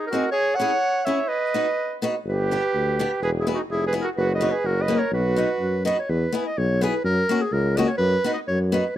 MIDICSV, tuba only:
0, 0, Header, 1, 2, 480
1, 0, Start_track
1, 0, Key_signature, 5, "major"
1, 0, Tempo, 477327
1, 365, Time_signature, 2, 2, 24, 8
1, 9027, End_track
2, 0, Start_track
2, 0, Title_t, "Tuba"
2, 0, Program_c, 0, 58
2, 2261, Note_on_c, 0, 31, 94
2, 2581, Note_off_c, 0, 31, 0
2, 2749, Note_on_c, 0, 38, 78
2, 3065, Note_off_c, 0, 38, 0
2, 3226, Note_on_c, 0, 28, 99
2, 3539, Note_off_c, 0, 28, 0
2, 3708, Note_on_c, 0, 29, 70
2, 4018, Note_off_c, 0, 29, 0
2, 4192, Note_on_c, 0, 30, 108
2, 4501, Note_off_c, 0, 30, 0
2, 4660, Note_on_c, 0, 30, 91
2, 4976, Note_off_c, 0, 30, 0
2, 5139, Note_on_c, 0, 35, 105
2, 5460, Note_off_c, 0, 35, 0
2, 5625, Note_on_c, 0, 42, 68
2, 5948, Note_off_c, 0, 42, 0
2, 6118, Note_on_c, 0, 40, 88
2, 6286, Note_off_c, 0, 40, 0
2, 6610, Note_on_c, 0, 35, 93
2, 6926, Note_off_c, 0, 35, 0
2, 7079, Note_on_c, 0, 42, 98
2, 7246, Note_off_c, 0, 42, 0
2, 7562, Note_on_c, 0, 37, 99
2, 7875, Note_off_c, 0, 37, 0
2, 8031, Note_on_c, 0, 42, 105
2, 8198, Note_off_c, 0, 42, 0
2, 8527, Note_on_c, 0, 42, 91
2, 8841, Note_off_c, 0, 42, 0
2, 9027, End_track
0, 0, End_of_file